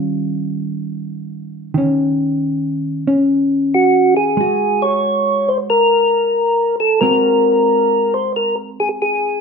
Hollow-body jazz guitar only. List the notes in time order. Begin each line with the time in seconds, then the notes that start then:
Already playing: D#3 G3 C#4 F4
1.74 D#3 C#4
3.07 C#4
4.37 G#3 F#4
7.02 G#3 C4 F#4 A#4